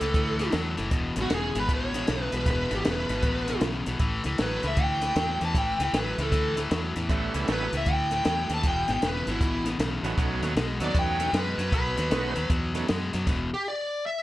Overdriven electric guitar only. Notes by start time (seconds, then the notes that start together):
0.01 A2 E3
0.15 A2 E3
0.39 A2 E3
0.53 A2 F#3
0.77 A2 E3
0.91 E2 B2
1.16 E2 B2
1.30 E2 C#3
1.55 E2 B2
1.69 E2 B2
1.94 E2 B2
2.08 E2 C#3
2.32 E2 B2
2.46 E2 B2
2.70 E2 B2
2.84 E2 C#3
3.09 E2 B2
3.24 E2 B2
3.48 E2 B2
3.62 E2 C#3
3.86 E2 B2
4.00 A2 E3
4.26 A2 E3
4.39 A2 F#3
4.63 A2 E3
4.78 A2 E3
5.02 A2 E3
5.16 A2 F#3
5.40 A2 E3
5.54 A2 E3
5.79 A2 E3
5.94 A2 F#3
6.18 A2 E3
6.32 A2 E3
6.57 A2 E3
6.71 A2 F#3
6.96 A2 E3
7.10 A2 E3
7.34 A2 E3
7.48 A2 F#3
7.73 A2 E3
7.87 A2 E3
8.12 A2 E3
8.25 A2 F#3
8.49 A2 E3
8.64 E2 B2
8.88 E2 B2
9.03 E2 C#3
9.27 E2 B2
9.41 E2 B2
9.65 E2 B2
9.79 E2 C#3
10.03 E2 B2
10.17 B2 F#3
10.42 B2 F#3
10.56 B2 G#3
10.80 B2 F#3
10.94 B2 F#3
11.19 B2 F#3
11.33 B2 G#3
11.58 B2 F#3
11.71 B2 F#3
11.96 B2 F#3
12.11 B2 G#3
12.35 B2 F#3
12.50 B2 F#3
12.74 B2 F#3
12.88 B2 G#3
13.13 B2 F#3
13.27 E2 B2